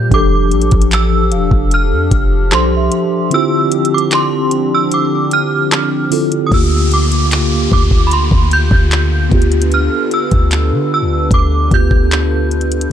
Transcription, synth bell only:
0.14 0.89 D6 medium
0.94 1.75 E6 medium
1.74 2.49 F6 medium
2.55 3.35 C6 medium
3.34 3.89 E6 loud
3.94 4.12 D6 medium
4.14 4.69 C6 medium
4.75 4.94 E6 medium
4.94 6.09 D6 medium
5.33 6.08 F6 loud
6.47 6.53 D#6 medium
6.54 6.68 E6 medium
6.94 7.69 D6 medium
7.73 8.06 D6 medium
8.07 8.13 B5 medium
8.13 8.53 C6 medium
8.53 9.28 G6 loud
9.74 10.14 F6 medium
10.14 10.93 E6 medium
10.94 11.30 E6 medium
11.34 11.70 D6 medium
11.74 12.92 G6 loud

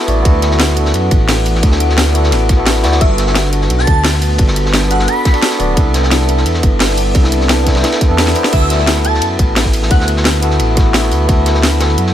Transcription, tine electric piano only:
0.00 0.06 B3 loud
0.00 0.07 E4 medium
0.00 0.08 F#4 medium
0.00 0.28 A4 loud
0.06 0.21 B3 loud
0.06 0.23 E4 medium
0.06 0.23 F#4 medium
0.06 0.24 D5 loud
0.22 0.73 B3 loud
0.22 0.74 E4 medium
0.26 0.75 F#4 medium
0.26 0.76 A4 loud
0.74 1.59 B3 medium
0.74 1.61 E4 medium
0.78 1.62 F#4 medium
0.78 1.63 A4 medium
1.60 2.10 B3 medium
1.60 2.12 E4 medium
1.60 2.13 F#4 medium
1.66 2.14 A4 medium
2.12 2.55 B3 medium
2.12 2.56 E4 medium
2.16 2.57 F#4 medium
2.16 2.58 A4 loud
2.57 2.81 B3 loud
2.57 2.82 E4 medium
2.57 2.82 F#4 medium
2.57 2.83 A4 loud
2.82 2.97 B3 medium
2.82 2.99 E4 medium
2.82 2.99 F#4 medium
2.82 3.00 D5 loud
2.98 3.49 B3 medium
2.98 3.50 D4 medium
2.98 3.51 F#4 medium
3.04 3.52 A4 loud
3.50 4.35 B3 medium
3.50 4.37 D4 medium
3.50 4.38 F#4 medium
3.56 4.39 A4 medium
4.36 4.87 B3 medium
4.36 4.88 D4 medium
4.40 4.89 F#4 medium
4.40 4.90 A4 medium
4.88 5.31 B3 loud
4.88 5.32 D4 medium
4.88 5.33 F#4 medium
4.94 5.34 A4 loud
5.32 5.57 B3 loud
5.32 5.57 D4 medium
5.32 5.58 F#4 medium
5.32 5.58 A4 loud
5.58 5.73 B3 loud
5.58 5.75 D4 medium
5.58 5.75 F#4 medium
5.58 5.76 D5 loud
5.74 6.24 B3 loud
5.74 6.26 D4 medium
5.78 6.27 E4 medium
5.78 6.28 A4 loud
6.25 7.11 B3 medium
6.25 7.12 D4 medium
6.25 7.13 E4 medium
6.31 7.14 A4 medium
7.12 7.63 B3 medium
7.12 7.64 D4 medium
7.16 7.65 E4 medium
7.16 7.66 A4 medium
7.64 8.07 B3 medium
7.64 8.08 D4 medium
7.64 8.09 E4 medium
7.70 8.10 A4 loud
8.08 8.33 B3 loud
8.08 8.33 D4 medium
8.08 8.34 E4 medium
8.08 8.34 A4 loud
8.34 8.49 B3 loud
8.34 8.51 D4 medium
8.34 8.51 E4 medium
8.34 8.52 C5 loud
8.50 9.01 B3 medium
8.50 9.02 E4 medium
8.56 9.04 A4 loud
9.02 9.87 B3 medium
9.02 9.88 E4 medium
9.02 9.89 F#4 medium
9.08 9.90 A4 medium
9.88 10.39 B3 medium
9.88 10.40 E4 medium
9.92 10.41 F#4 medium
9.92 10.42 A4 medium
10.41 10.74 B3 loud
10.41 10.75 E4 medium
10.41 10.76 F#4 medium
10.41 10.76 A4 loud
10.75 11.00 B3 medium
10.75 11.01 E4 medium
10.75 11.01 F#4 medium
10.75 11.01 B4 loud
11.01 11.24 B3 medium
11.01 11.26 E4 medium
11.01 11.27 F#4 medium
11.01 11.27 A4 loud
11.26 11.76 B3 loud
11.26 11.78 E4 medium
11.26 11.79 F#4 medium
11.32 11.80 A4 loud
11.78 12.14 B3 medium
11.78 12.14 E4 medium
11.82 12.14 F#4 medium
11.82 12.14 A4 medium

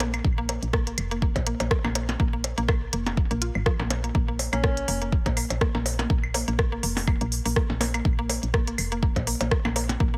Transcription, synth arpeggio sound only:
0.00 0.02 A#3 loud
0.14 0.18 A#3 medium
0.38 0.40 A#3 loud
0.49 0.54 A#3 medium
0.73 0.76 A#3 loud
0.87 0.91 A#3 medium
1.11 1.13 A#3 loud
1.22 1.28 A#3 medium
1.47 1.49 A#3 loud
1.60 1.64 A#3 medium
1.85 1.87 A#3 loud
1.95 2.01 A#3 medium
2.20 2.22 A#3 loud
2.33 2.38 A#3 medium
2.58 2.60 A#3 loud
2.68 2.74 A#3 medium
2.93 2.95 A#3 loud
3.06 3.11 A#3 medium
3.31 3.33 A#3 loud
3.42 3.45 F4 medium
3.66 3.70 F3 loud
3.79 3.82 A#3 loud
4.04 4.08 A#3 medium
4.15 4.17 A#3 loud
4.28 4.33 A#3 medium
4.53 4.55 A#3 loud
4.64 4.69 A#3 medium
4.88 4.90 A#3 loud
5.02 5.06 A#3 medium
5.26 5.28 A#3 loud
5.37 5.42 A#3 medium
5.61 5.63 A#3 loud
5.75 5.79 A#3 medium
5.99 6.01 A#3 loud
6.10 6.15 A#3 medium
6.34 6.36 A#3 loud
6.48 6.52 A#3 medium
6.72 6.74 A#3 loud
6.83 6.88 A#3 medium
7.07 7.10 A#3 loud
7.21 7.25 A#3 medium
7.45 7.47 A#3 loud
7.56 7.62 A#3 medium
7.81 7.83 A#3 loud
7.94 7.99 A#3 medium
8.19 8.21 A#3 loud
8.30 8.35 A#3 medium
8.54 8.56 A#3 loud
8.68 8.72 A#3 medium
8.92 8.94 A#3 loud
9.03 9.08 A#3 medium
9.27 9.29 A#3 loud
9.41 9.45 A#3 medium
9.65 9.67 A#3 loud
9.76 9.81 A#3 medium
10.00 10.02 A#3 loud
10.14 10.18 A#3 medium

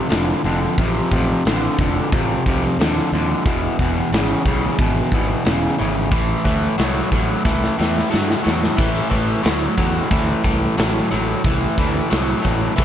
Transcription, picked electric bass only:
0.11 0.32 F1 medium
0.44 0.66 F1 medium
0.78 0.99 A1 medium
1.12 1.33 A1 medium
1.46 1.67 A1 medium
1.78 2.00 F1 medium
2.13 2.34 A1 medium
2.46 2.67 C2 medium
2.78 3.00 D#2 medium
3.13 3.33 D#2 medium
3.46 3.67 E1 medium
3.79 4.00 E1 medium
4.12 4.33 G#1 medium
4.45 4.66 B1 medium
4.79 5.00 G#1 medium
5.13 5.34 G#1 medium
5.46 5.67 E1 medium
5.81 6.12 G#1 medium
6.12 6.33 A1 medium
6.45 6.66 D2 medium
6.79 7.00 C2 loud
7.11 7.33 A1 medium
7.46 7.67 C2 medium
7.80 8.00 E2 medium
8.14 8.34 G2 medium
8.46 8.67 E2 medium
8.79 9.00 A1 medium
9.12 9.33 A1 medium
9.45 9.66 D2 medium
9.78 9.99 E2 medium
10.11 10.33 D2 medium
10.44 10.66 C2 medium
10.79 11.00 A1 medium
11.13 11.33 A1 medium
11.45 11.66 C2 medium
11.78 11.99 D2 medium
12.12 12.33 C2 medium
12.45 12.66 A1 medium
12.79 12.85 C2 medium

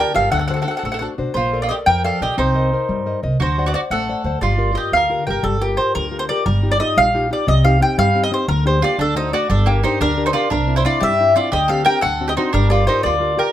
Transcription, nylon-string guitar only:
0.00 0.14 D3 medium
0.00 0.13 F4 soft
0.00 0.14 G4 soft
0.00 0.14 A#4 soft
0.14 0.28 F4 soft
0.14 0.29 G4 soft
0.14 0.29 A#4 soft
0.31 0.65 D3 medium
0.50 0.66 D4 soft
0.50 0.67 F#4 soft
0.50 0.67 C5 soft
0.67 0.94 D4 soft
0.67 0.95 F#4 soft
0.67 0.95 C5 soft
0.85 1.18 A3 medium
1.01 1.17 D4 soft
1.01 1.17 F#4 soft
1.01 1.18 C5 soft
1.18 1.32 D4 soft
1.18 1.32 F#4 soft
1.18 1.32 C5 soft
1.35 1.69 A#3 medium
1.53 1.69 A4 soft
1.53 1.69 A#4 soft
1.53 1.70 D5 soft
1.70 1.97 A4 soft
1.70 1.98 A#4 soft
1.70 1.98 D5 soft
1.87 2.20 F3 medium
2.04 2.19 A4 soft
2.04 2.20 A#4 soft
2.04 2.20 D5 soft
2.21 2.34 A4 soft
2.21 2.35 A#4 soft
2.21 2.35 D5 soft
2.37 2.71 C4 medium
2.55 2.72 A#4 soft
2.55 2.73 C5 soft
2.55 2.73 D#5 soft
2.73 3.00 A#4 soft
2.73 3.00 C5 soft
2.73 3.00 D#5 soft
2.89 3.22 G3 medium
3.06 3.22 A#4 soft
3.06 3.22 C5 soft
3.06 3.22 D#5 soft
3.23 3.36 A#4 soft
3.23 3.37 C5 soft
3.23 3.37 D#5 medium
3.40 3.73 D4 medium
3.58 3.73 C5 soft
3.58 3.73 D5 soft
3.58 3.74 F#5 medium
3.74 4.01 C5 soft
3.74 4.01 D5 soft
3.74 4.02 F#5 soft
3.93 4.25 A3 medium
4.09 4.24 C5 soft
4.09 4.25 D5 soft
4.09 4.25 F#5 soft
4.25 4.39 C5 soft
4.25 4.39 D5 soft
4.25 4.39 F#5 soft
4.42 4.58 G3 medium
4.58 4.73 F4 soft
4.58 4.73 G4 soft
4.58 4.74 A#4 soft
4.74 5.02 F4 soft
4.74 5.02 G4 soft
4.74 5.03 A#4 soft
4.93 5.26 D3 medium
5.10 5.26 F4 soft
5.10 5.26 G4 soft
5.10 5.26 A#4 soft
5.27 5.40 F4 soft
5.27 5.41 G4 soft
5.27 5.41 A#4 soft
5.43 5.60 G3 medium
5.61 5.77 F4 soft
5.61 5.78 G4 soft
5.61 5.78 A#4 medium
5.78 6.05 F4 soft
5.78 6.06 G4 soft
5.78 6.06 A#4 soft
5.96 6.28 D3 medium
6.11 6.29 F4 soft
6.11 6.29 G4 soft
6.11 6.29 A#4 soft
6.30 6.43 F4 soft
6.30 6.43 G4 soft
6.30 6.43 A#4 soft
6.47 6.79 G3 medium
6.63 6.79 D#4 soft
6.63 6.80 F4 soft
6.63 6.80 G4 soft
6.80 7.07 D#4 soft
6.80 7.08 F4 soft
6.80 7.08 G4 soft
6.97 7.30 G3 medium
7.14 7.29 D#4 soft
7.14 7.30 F4 soft
7.14 7.30 G4 soft
7.30 7.44 D#4 soft
7.30 7.44 F4 soft
7.30 7.44 G4 soft
7.47 7.80 C3 medium
7.65 7.79 C4 soft
7.65 7.79 D#4 soft
7.65 7.80 G4 medium
7.80 8.07 C4 soft
7.80 8.08 D#4 soft
7.80 8.08 G4 soft
7.98 8.31 G3 medium
8.15 8.30 C4 soft
8.15 8.31 D#4 soft
8.15 8.31 G4 soft
8.31 8.45 C4 soft
8.31 8.45 D#4 soft
8.31 8.46 G4 soft
8.48 8.81 D3 medium
8.65 8.80 A#3 soft
8.65 8.81 D4 soft
8.65 8.82 G4 soft
8.82 8.95 A#3 soft
8.82 8.96 D4 soft
8.82 8.96 G4 soft
8.99 9.32 D3 medium
9.15 9.32 A3 soft
9.15 9.32 D4 soft
9.15 9.32 F#4 soft
9.33 9.46 A3 soft
9.33 9.47 D4 soft
9.33 9.47 F#4 soft
9.50 9.83 G3 medium
9.66 9.82 D4 soft
9.66 9.83 G4 soft
9.66 9.83 A#4 medium
9.83 10.11 D4 soft
9.83 10.11 G4 soft
9.83 10.11 A#4 soft
10.01 10.34 D3 medium
10.17 10.33 D4 soft
10.17 10.33 G4 soft
10.17 10.34 A#4 soft
10.34 10.47 D4 soft
10.34 10.48 G4 soft
10.34 10.48 A#4 soft
10.51 10.84 C3 medium
10.67 10.83 C4 soft
10.67 10.84 D4 soft
10.67 10.84 E4 medium
10.84 11.12 C4 soft
10.84 11.12 D4 soft
10.84 11.12 E4 medium
11.01 11.34 G3 medium
11.19 11.34 C4 soft
11.19 11.35 D4 soft
11.19 11.35 E4 soft
11.35 11.49 C4 soft
11.35 11.49 D4 soft
11.35 11.49 E4 soft
11.52 11.85 D3 medium
11.69 11.85 C4 medium
11.69 11.85 D4 soft
11.69 11.86 G4 medium
11.86 11.99 C4 soft
11.86 11.99 D4 soft
11.86 12.00 G4 soft
12.03 12.36 D3 medium
12.21 12.36 C4 soft
12.21 12.37 D4 soft
12.21 12.37 F#4 soft
12.37 12.50 C4 soft
12.37 12.51 D4 soft
12.37 12.51 F#4 medium
12.54 12.87 G3 medium
12.70 12.85 F4 soft
12.70 12.86 G4 soft
12.70 12.87 A#4 soft
12.87 13.14 F4 soft
12.87 13.15 G4 soft
12.87 13.15 A#4 soft
13.03 13.37 D3 medium
13.20 13.36 F4 soft
13.20 13.36 G4 soft
13.20 13.37 A#4 soft
13.37 13.51 F4 soft
13.37 13.52 G4 soft
13.37 13.52 A#4 soft

